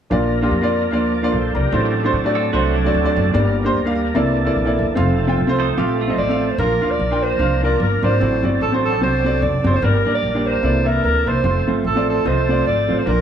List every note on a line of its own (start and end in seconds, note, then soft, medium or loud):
0.10 0.45 A#1 medium
0.10 0.70 A#2 medium
0.10 1.69 F3 medium
0.10 0.31 A#3 medium
0.10 1.69 A#3 medium
0.10 1.69 D4 medium
0.10 0.31 D4 medium
0.10 0.31 F4 medium
0.10 1.12 A#4 medium
0.10 0.32 D5 medium
0.42 0.53 A#3 medium
0.42 0.53 D4 medium
0.42 0.53 F4 medium
0.42 0.54 G4 medium
0.51 0.92 F2 medium
0.61 0.80 A#3 medium
0.61 0.80 D4 medium
0.61 0.81 F4 medium
0.61 0.81 D5 medium
0.91 1.26 D2 medium
0.91 1.11 A#3 medium
0.91 1.12 D4 medium
0.91 1.12 F4 medium
0.91 1.13 D5 medium
1.14 1.31 A#4 soft
1.14 1.31 D5 medium
1.22 1.33 A#3 medium
1.22 1.34 D4 medium
1.22 1.34 F4 medium
1.22 1.33 D5 medium
1.32 1.52 A#1 medium
1.32 1.54 A4 medium
1.32 1.54 C5 medium
1.32 1.54 F5 medium
1.55 1.70 C2 medium
1.55 1.94 G4 soft
1.55 1.94 A#4 medium
1.55 1.94 D5 medium
1.55 1.93 A#5 medium
1.72 2.07 A1 loud
1.72 2.32 A2 medium
1.72 3.31 F#3 medium
1.72 1.92 A3 medium
1.72 3.32 C4 medium
1.72 1.93 D4 medium
1.72 3.31 D4 medium
1.72 1.93 F#4 medium
1.72 3.31 A4 medium
1.72 1.93 C5 medium
2.03 2.15 A3 medium
2.03 2.15 D4 medium
2.03 2.15 F#4 medium
2.03 2.16 C5 medium
2.13 2.48 A2 medium
2.24 2.42 A3 medium
2.24 2.43 D4 medium
2.24 2.43 F#4 medium
2.24 2.43 D5 medium
2.35 2.53 C4 medium
2.35 2.52 A4 medium
2.52 2.88 C2 medium
2.52 2.73 A3 medium
2.52 2.75 A3 medium
2.52 2.73 D4 medium
2.52 2.75 F#4 medium
2.52 2.74 F#4 medium
2.52 2.74 C5 medium
2.76 3.32 F#3 medium
2.76 3.31 D4 medium
2.84 2.96 A3 medium
2.84 2.96 D4 medium
2.84 2.96 F#4 medium
2.84 2.97 D5 medium
2.94 3.14 D2 medium
3.04 3.23 A3 medium
3.04 3.23 D4 medium
3.04 3.23 F#4 medium
3.04 3.24 D5 medium
3.16 3.32 F#1 medium
3.32 3.69 G1 loud
3.32 3.93 G2 medium
3.32 4.14 G3 medium
3.32 3.54 A#3 medium
3.32 4.14 A#3 medium
3.32 3.54 D4 medium
3.32 4.14 D4 medium
3.32 3.54 G4 medium
3.32 3.40 A4 medium
3.32 3.54 D5 medium
3.40 4.17 A#4 medium
3.64 3.76 A#3 medium
3.64 3.76 D4 medium
3.64 3.77 G4 medium
3.64 3.77 C5 medium
3.75 4.09 D2 medium
3.84 4.04 A#3 medium
3.84 4.04 D4 medium
3.84 4.04 G4 medium
3.84 4.05 F5 medium
4.14 4.50 C2 medium
4.14 4.75 C3 medium
4.14 4.21 D#3 medium
4.14 4.35 A#3 medium
4.14 4.95 A#3 medium
4.14 4.95 D4 medium
4.14 4.35 E4 medium
4.14 4.94 A4 medium
4.14 4.36 A4 medium
4.14 4.36 D5 medium
4.20 4.97 E3 medium
4.45 4.57 A#3 medium
4.45 4.57 E4 medium
4.45 4.57 A4 medium
4.45 4.58 D5 medium
4.56 4.80 A#1 medium
4.65 4.85 A#3 medium
4.65 4.85 E4 medium
4.65 4.85 A4 medium
4.65 4.85 D5 medium
4.78 4.94 E1 medium
4.95 5.39 F1 loud
4.95 6.55 F3 medium
4.95 6.55 A3 medium
4.95 5.16 C4 medium
4.95 6.55 C4 medium
4.95 5.16 F4 medium
4.95 6.55 A4 medium
4.95 5.17 A4 medium
4.95 5.17 F5 medium
5.27 5.39 C4 medium
5.27 5.39 F4 medium
5.27 5.39 A4 medium
5.27 5.40 G5 medium
5.37 5.72 C2 medium
5.47 5.66 C4 medium
5.47 5.67 F4 medium
5.47 5.67 A4 medium
5.47 5.67 C5 loud
5.60 5.77 D#4 soft
5.60 5.77 C5 medium
5.77 6.12 A#1 medium
5.77 5.98 C4 medium
5.77 5.98 F4 medium
5.77 5.99 G4 medium
5.77 5.98 A4 medium
5.77 5.99 F5 medium
6.01 6.56 A3 medium
6.01 6.56 F4 medium
6.08 6.19 C4 medium
6.08 6.20 F4 medium
6.08 6.20 A4 medium
6.08 6.21 D#5 medium
6.18 6.52 A1 medium
6.18 6.52 D5 medium
6.29 6.47 C4 medium
6.29 6.48 F4 medium
6.29 6.48 A4 medium
6.29 6.48 F5 medium
6.50 6.59 C5 medium
6.58 6.78 A#1 loud
6.58 7.19 A#2 medium
6.58 8.18 F3 medium
6.58 8.18 A#3 medium
6.58 6.72 D4 medium
6.58 8.18 D4 medium
6.58 6.72 F4 medium
6.58 6.92 A#4 medium
6.58 6.73 A#4 medium
6.58 8.18 A#4 medium
6.58 6.73 F5 medium
6.81 6.97 D2 medium
6.81 6.97 D4 medium
6.81 6.97 F4 medium
6.81 6.98 A#4 medium
6.81 6.98 F5 medium
6.91 7.24 D5 medium
6.99 7.34 A#1 medium
7.11 7.29 D4 medium
7.11 7.29 F4 medium
7.11 7.29 A#4 medium
7.11 7.30 G5 medium
7.23 7.63 C5 medium
7.39 7.74 C2 medium
7.39 7.53 D4 medium
7.39 7.53 F4 medium
7.39 7.54 A#4 medium
7.39 7.54 F5 medium
7.63 7.84 D4 medium
7.63 7.85 F4 medium
7.63 7.80 A#4 medium
7.63 7.85 A#4 medium
7.63 7.85 D5 medium
7.80 7.99 G1 medium
7.80 8.06 A#4 medium
8.03 8.18 G#1 medium
8.03 8.13 D4 medium
8.03 8.13 F4 medium
8.03 8.14 A#4 medium
8.03 8.44 C5 medium
8.03 8.14 D5 medium
8.20 8.40 A1 loud
8.20 8.80 A2 medium
8.20 9.79 F#3 medium
8.20 9.79 C4 medium
8.20 8.34 C4 medium
8.20 9.79 D4 medium
8.20 8.34 F#4 medium
8.20 9.79 A4 medium
8.20 8.34 A4 medium
8.20 8.35 D5 medium
8.43 8.58 G1 medium
8.43 8.59 C4 medium
8.43 8.59 F#4 medium
8.43 8.59 A4 medium
8.43 8.60 D5 medium
8.61 9.02 A1 medium
8.61 8.72 A4 medium
8.72 8.90 C4 medium
8.72 8.91 F#4 medium
8.72 8.91 A4 medium
8.72 8.91 C5 medium
8.85 9.01 A4 medium
9.01 9.43 C2 medium
9.01 9.15 C4 medium
9.01 9.15 F#4 medium
9.01 9.15 A4 medium
9.01 9.44 C5 medium
9.01 9.16 C5 medium
9.24 9.46 C4 medium
9.24 9.46 F#4 medium
9.24 9.47 A4 medium
9.24 9.47 D5 medium
9.42 9.61 F1 medium
9.42 9.77 D5 medium
9.64 9.80 F#1 loud
9.64 9.75 C4 medium
9.64 9.75 F#4 medium
9.64 9.76 A4 medium
9.64 9.76 C5 medium
9.75 9.86 C5 medium
9.82 10.02 G1 loud
9.82 10.42 G2 medium
9.82 10.62 G3 medium
9.82 9.96 A#3 medium
9.82 10.62 A#3 medium
9.82 9.96 D4 medium
9.82 10.62 D4 medium
9.82 9.96 G4 medium
9.82 10.62 A#4 medium
9.82 10.14 A#4 loud
9.82 9.97 D5 medium
10.04 10.20 A1 medium
10.04 10.21 A#3 medium
10.04 10.21 D4 medium
10.04 10.21 G4 medium
10.04 10.21 D5 medium
10.15 10.48 D5 loud
10.23 10.57 A#1 medium
10.34 10.52 A#3 medium
10.34 10.53 D4 medium
10.34 10.53 G4 medium
10.34 10.53 D5 medium
10.46 10.90 C5 medium
10.62 10.97 C2 medium
10.62 11.23 C3 medium
10.62 10.69 D#3 medium
10.62 10.76 A#3 medium
10.62 11.43 A#3 medium
10.62 11.43 D4 soft
10.62 10.77 E4 medium
10.62 11.43 A4 medium
10.62 10.77 A4 medium
10.62 10.77 D5 medium
10.68 11.45 E3 medium
10.84 11.07 A#3 medium
10.84 11.07 E4 medium
10.84 11.08 A4 medium
10.84 11.04 A#4 medium
10.84 11.08 E5 medium
11.04 11.23 D2 medium
11.04 11.30 A#4 medium
11.26 11.42 C2 medium
11.26 11.37 A#3 medium
11.26 11.37 E4 medium
11.26 11.37 A4 medium
11.26 11.38 C5 medium
11.26 11.68 C5 medium
11.43 11.63 F1 loud
11.43 13.04 F3 medium
11.43 11.57 A3 medium
11.43 13.04 A3 medium
11.43 11.57 C4 medium
11.43 13.04 C4 medium
11.43 11.58 F4 medium
11.43 11.51 G4 medium
11.43 11.58 C5 medium
11.51 13.06 A4 medium
11.67 11.82 G1 medium
11.67 11.83 A3 medium
11.67 11.83 C4 medium
11.67 11.83 F4 medium
11.67 11.83 C5 medium
11.84 12.19 A1 medium
11.84 12.07 A4 medium
11.95 12.14 A3 medium
11.95 12.14 C4 medium
11.95 12.14 F4 medium
11.95 12.15 D5 medium
12.10 12.28 A4 medium
12.24 12.60 C2 medium
12.24 12.38 A3 medium
12.24 12.39 C4 medium
12.24 12.39 F4 medium
12.24 12.67 C5 medium
12.24 12.39 D#5 medium
12.48 12.70 A3 medium
12.48 12.70 C4 medium
12.48 12.71 F4 medium
12.48 12.71 D5 medium
12.66 12.85 G#1 medium
12.66 13.00 D5 medium
12.87 13.04 A1 medium
12.87 12.98 A3 medium
12.87 12.99 C4 medium
12.87 12.99 F4 medium
12.87 13.00 C5 medium
12.99 13.10 C5 medium
13.05 13.21 A#1 loud
13.05 13.21 A#2 medium
13.05 13.21 F3 medium
13.05 13.19 A#3 medium
13.05 13.21 A#3 medium
13.05 13.21 D4 medium
13.05 13.20 D4 medium
13.05 13.20 F4 medium
13.05 13.21 A#4 medium
13.05 13.21 A#4 loud
13.05 13.20 D5 medium